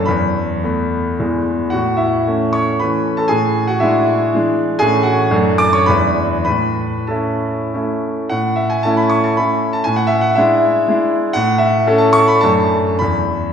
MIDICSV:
0, 0, Header, 1, 2, 480
1, 0, Start_track
1, 0, Key_signature, 3, "major"
1, 0, Tempo, 546946
1, 71, Time_signature, 3, 2, 24, 8
1, 2475, Tempo, 501253
1, 4875, Tempo, 571429
1, 5835, Tempo, 632244
1, 6795, Tempo, 587084
1, 7275, Tempo, 528634
1, 8235, Tempo, 502092
1, 10635, Tempo, 571429
1, 12012, End_track
2, 0, Start_track
2, 0, Title_t, "Grand piano"
2, 0, Program_c, 0, 0
2, 0, Control_c, 0, 64, 127
2, 0, Note_on_c, 0, 54, 42
2, 0, Note_on_c, 0, 69, 61
2, 0, Note_on_c, 0, 81, 80
2, 49, Note_on_c, 0, 83, 69
2, 61, Note_on_c, 0, 71, 47
2, 74, Note_on_c, 0, 40, 52
2, 81, Control_c, 0, 64, 0
2, 89, Note_off_c, 0, 69, 0
2, 89, Note_off_c, 0, 81, 0
2, 91, Note_off_c, 0, 54, 0
2, 253, Control_c, 0, 64, 127
2, 547, Note_off_c, 0, 40, 0
2, 556, Note_on_c, 0, 57, 36
2, 561, Note_on_c, 0, 59, 42
2, 1013, Note_off_c, 0, 71, 0
2, 1016, Note_off_c, 0, 57, 0
2, 1019, Note_off_c, 0, 59, 0
2, 1043, Note_off_c, 0, 83, 0
2, 1046, Note_on_c, 0, 52, 31
2, 1051, Note_on_c, 0, 40, 46
2, 1056, Note_on_c, 0, 56, 33
2, 1058, Note_on_c, 0, 59, 32
2, 1060, Control_c, 0, 64, 0
2, 1223, Control_c, 0, 64, 127
2, 1481, Note_off_c, 0, 52, 0
2, 1486, Note_off_c, 0, 56, 0
2, 1487, Note_off_c, 0, 59, 0
2, 1493, Note_on_c, 0, 78, 60
2, 1505, Note_off_c, 0, 40, 0
2, 1508, Note_on_c, 0, 66, 48
2, 1516, Note_on_c, 0, 45, 45
2, 1532, Control_c, 0, 64, 0
2, 1680, Control_c, 0, 64, 127
2, 1726, Note_on_c, 0, 76, 53
2, 1731, Note_off_c, 0, 66, 0
2, 1740, Note_off_c, 0, 78, 0
2, 1740, Note_on_c, 0, 64, 40
2, 1982, Note_off_c, 0, 45, 0
2, 1993, Note_on_c, 0, 57, 37
2, 1999, Note_on_c, 0, 61, 41
2, 2201, Note_off_c, 0, 64, 0
2, 2218, Note_on_c, 0, 85, 71
2, 2228, Note_off_c, 0, 76, 0
2, 2229, Note_on_c, 0, 73, 54
2, 2437, Note_off_c, 0, 57, 0
2, 2440, Note_off_c, 0, 61, 0
2, 2452, Note_off_c, 0, 73, 0
2, 2453, Note_on_c, 0, 83, 70
2, 2463, Note_off_c, 0, 85, 0
2, 2466, Note_on_c, 0, 71, 49
2, 2474, Note_on_c, 0, 52, 37
2, 2480, Note_on_c, 0, 57, 37
2, 2485, Note_on_c, 0, 61, 41
2, 2486, Control_c, 0, 64, 0
2, 2806, Note_off_c, 0, 71, 0
2, 2810, Note_on_c, 0, 81, 64
2, 2822, Note_on_c, 0, 69, 48
2, 2825, Note_off_c, 0, 83, 0
2, 2914, Note_on_c, 0, 80, 72
2, 2916, Note_off_c, 0, 52, 0
2, 2919, Note_off_c, 0, 57, 0
2, 2921, Note_off_c, 0, 61, 0
2, 2924, Note_on_c, 0, 68, 55
2, 2938, Note_off_c, 0, 69, 0
2, 2940, Note_on_c, 0, 45, 52
2, 2941, Note_off_c, 0, 81, 0
2, 3116, Control_c, 0, 64, 127
2, 3275, Note_off_c, 0, 68, 0
2, 3293, Note_on_c, 0, 78, 62
2, 3296, Note_off_c, 0, 80, 0
2, 3303, Note_on_c, 0, 66, 47
2, 3412, Note_on_c, 0, 76, 68
2, 3419, Note_off_c, 0, 45, 0
2, 3419, Note_on_c, 0, 64, 51
2, 3426, Note_off_c, 0, 66, 0
2, 3430, Note_off_c, 0, 78, 0
2, 3433, Note_on_c, 0, 56, 45
2, 3433, Note_on_c, 0, 62, 47
2, 3881, Note_off_c, 0, 56, 0
2, 3881, Note_off_c, 0, 62, 0
2, 3932, Note_on_c, 0, 52, 42
2, 3935, Control_c, 0, 64, 0
2, 3939, Note_on_c, 0, 56, 44
2, 3942, Note_on_c, 0, 62, 49
2, 4105, Note_off_c, 0, 64, 0
2, 4140, Note_off_c, 0, 76, 0
2, 4348, Note_off_c, 0, 52, 0
2, 4352, Note_off_c, 0, 56, 0
2, 4353, Note_off_c, 0, 62, 0
2, 4360, Note_on_c, 0, 80, 86
2, 4364, Note_on_c, 0, 68, 68
2, 4375, Note_on_c, 0, 52, 45
2, 4379, Note_on_c, 0, 45, 60
2, 4391, Note_on_c, 0, 57, 43
2, 4391, Note_on_c, 0, 61, 48
2, 4548, Control_c, 0, 64, 127
2, 4592, Note_off_c, 0, 68, 0
2, 4593, Note_on_c, 0, 78, 65
2, 4605, Note_on_c, 0, 66, 53
2, 4607, Note_off_c, 0, 80, 0
2, 4833, Note_off_c, 0, 52, 0
2, 4841, Note_off_c, 0, 57, 0
2, 4841, Note_off_c, 0, 61, 0
2, 4858, Note_off_c, 0, 45, 0
2, 4861, Note_on_c, 0, 42, 63
2, 4862, Note_on_c, 0, 54, 47
2, 4864, Note_on_c, 0, 57, 50
2, 4871, Note_on_c, 0, 62, 46
2, 4885, Control_c, 0, 64, 0
2, 5044, Control_c, 0, 64, 127
2, 5072, Note_off_c, 0, 66, 0
2, 5090, Note_on_c, 0, 86, 90
2, 5096, Note_on_c, 0, 74, 71
2, 5100, Note_off_c, 0, 78, 0
2, 5212, Note_off_c, 0, 74, 0
2, 5214, Note_on_c, 0, 85, 76
2, 5217, Note_off_c, 0, 86, 0
2, 5223, Note_on_c, 0, 73, 61
2, 5306, Note_off_c, 0, 54, 0
2, 5307, Note_off_c, 0, 57, 0
2, 5310, Note_off_c, 0, 62, 0
2, 5324, Note_on_c, 0, 83, 79
2, 5325, Note_off_c, 0, 42, 0
2, 5333, Note_on_c, 0, 71, 57
2, 5334, Note_off_c, 0, 73, 0
2, 5338, Note_off_c, 0, 85, 0
2, 5344, Note_on_c, 0, 56, 39
2, 5347, Note_on_c, 0, 40, 55
2, 5350, Note_on_c, 0, 62, 41
2, 5350, Note_on_c, 0, 64, 40
2, 5354, Control_c, 0, 64, 0
2, 5522, Control_c, 0, 64, 127
2, 5795, Note_off_c, 0, 71, 0
2, 5801, Note_off_c, 0, 56, 0
2, 5803, Note_off_c, 0, 83, 0
2, 5804, Note_off_c, 0, 62, 0
2, 5804, Note_off_c, 0, 64, 0
2, 5816, Note_on_c, 0, 83, 69
2, 5821, Note_off_c, 0, 40, 0
2, 5823, Note_on_c, 0, 71, 55
2, 5836, Note_on_c, 0, 45, 48
2, 5841, Control_c, 0, 64, 0
2, 6013, Control_c, 0, 64, 127
2, 6280, Note_off_c, 0, 71, 0
2, 6293, Note_on_c, 0, 81, 48
2, 6300, Note_on_c, 0, 69, 37
2, 6302, Note_off_c, 0, 45, 0
2, 6307, Note_off_c, 0, 83, 0
2, 6315, Note_on_c, 0, 61, 36
2, 6317, Note_on_c, 0, 64, 38
2, 6756, Note_off_c, 0, 69, 0
2, 6764, Note_off_c, 0, 61, 0
2, 6765, Note_off_c, 0, 64, 0
2, 6783, Note_off_c, 0, 81, 0
2, 6799, Note_on_c, 0, 57, 30
2, 6799, Note_on_c, 0, 61, 30
2, 6806, Note_on_c, 0, 64, 33
2, 6808, Control_c, 0, 64, 0
2, 7244, Note_off_c, 0, 57, 0
2, 7244, Note_off_c, 0, 61, 0
2, 7247, Note_off_c, 0, 64, 0
2, 7254, Note_on_c, 0, 78, 69
2, 7268, Note_on_c, 0, 45, 49
2, 7449, Control_c, 0, 64, 127
2, 7490, Note_on_c, 0, 76, 57
2, 7497, Note_off_c, 0, 78, 0
2, 7616, Note_on_c, 0, 80, 64
2, 7619, Note_off_c, 0, 76, 0
2, 7734, Note_off_c, 0, 45, 0
2, 7737, Note_on_c, 0, 81, 76
2, 7746, Note_off_c, 0, 80, 0
2, 7753, Note_on_c, 0, 57, 48
2, 7754, Note_on_c, 0, 61, 49
2, 7765, Note_on_c, 0, 64, 52
2, 7865, Note_on_c, 0, 83, 66
2, 7868, Note_off_c, 0, 81, 0
2, 7978, Note_on_c, 0, 85, 76
2, 7992, Note_off_c, 0, 83, 0
2, 8107, Note_off_c, 0, 85, 0
2, 8107, Note_on_c, 0, 81, 63
2, 8198, Note_off_c, 0, 57, 0
2, 8198, Note_off_c, 0, 61, 0
2, 8204, Note_off_c, 0, 64, 0
2, 8228, Note_on_c, 0, 83, 72
2, 8229, Note_off_c, 0, 81, 0
2, 8244, Note_on_c, 0, 57, 38
2, 8245, Control_c, 0, 64, 0
2, 8250, Note_on_c, 0, 61, 41
2, 8253, Note_on_c, 0, 64, 46
2, 8571, Note_on_c, 0, 81, 69
2, 8581, Note_off_c, 0, 83, 0
2, 8664, Note_off_c, 0, 57, 0
2, 8667, Note_off_c, 0, 61, 0
2, 8669, Note_off_c, 0, 64, 0
2, 8676, Note_on_c, 0, 80, 76
2, 8691, Note_off_c, 0, 81, 0
2, 8702, Note_on_c, 0, 45, 57
2, 8794, Note_on_c, 0, 78, 67
2, 8802, Note_off_c, 0, 80, 0
2, 8863, Control_c, 0, 64, 127
2, 8896, Note_on_c, 0, 76, 75
2, 8925, Note_off_c, 0, 78, 0
2, 9034, Note_on_c, 0, 78, 67
2, 9041, Note_off_c, 0, 76, 0
2, 9167, Note_on_c, 0, 76, 74
2, 9177, Note_off_c, 0, 78, 0
2, 9178, Note_off_c, 0, 45, 0
2, 9191, Note_on_c, 0, 62, 52
2, 9192, Note_on_c, 0, 56, 55
2, 9198, Note_on_c, 0, 64, 60
2, 9204, Control_c, 0, 64, 0
2, 9649, Note_off_c, 0, 56, 0
2, 9649, Note_off_c, 0, 62, 0
2, 9652, Note_off_c, 0, 64, 0
2, 9674, Note_on_c, 0, 56, 47
2, 9678, Note_on_c, 0, 62, 49
2, 9690, Note_on_c, 0, 64, 52
2, 9908, Note_off_c, 0, 76, 0
2, 10104, Note_on_c, 0, 78, 92
2, 10106, Note_off_c, 0, 56, 0
2, 10108, Note_off_c, 0, 62, 0
2, 10114, Note_off_c, 0, 64, 0
2, 10123, Note_on_c, 0, 45, 65
2, 10327, Control_c, 0, 64, 127
2, 10342, Note_on_c, 0, 76, 71
2, 10361, Note_off_c, 0, 78, 0
2, 10605, Note_off_c, 0, 45, 0
2, 10615, Note_on_c, 0, 57, 61
2, 10622, Note_on_c, 0, 61, 63
2, 10622, Note_on_c, 0, 69, 68
2, 10713, Note_on_c, 0, 81, 80
2, 10730, Note_off_c, 0, 76, 0
2, 10836, Note_on_c, 0, 85, 101
2, 10846, Note_off_c, 0, 81, 0
2, 10962, Note_on_c, 0, 83, 84
2, 10966, Note_off_c, 0, 85, 0
2, 11055, Note_off_c, 0, 57, 0
2, 11058, Note_off_c, 0, 61, 0
2, 11058, Note_off_c, 0, 69, 0
2, 11071, Note_on_c, 0, 81, 87
2, 11088, Note_off_c, 0, 83, 0
2, 11090, Note_on_c, 0, 57, 45
2, 11093, Note_on_c, 0, 62, 46
2, 11096, Note_on_c, 0, 42, 59
2, 11101, Note_on_c, 0, 69, 46
2, 11108, Control_c, 0, 64, 0
2, 11254, Control_c, 0, 64, 127
2, 11540, Note_off_c, 0, 57, 0
2, 11541, Note_off_c, 0, 62, 0
2, 11545, Note_off_c, 0, 69, 0
2, 11558, Note_on_c, 0, 83, 76
2, 11562, Note_off_c, 0, 42, 0
2, 11564, Note_off_c, 0, 81, 0
2, 11583, Note_on_c, 0, 40, 55
2, 11589, Control_c, 0, 64, 0
2, 11781, Control_c, 0, 64, 127
2, 12012, Note_off_c, 0, 40, 0
2, 12012, Note_off_c, 0, 83, 0
2, 12012, End_track
0, 0, End_of_file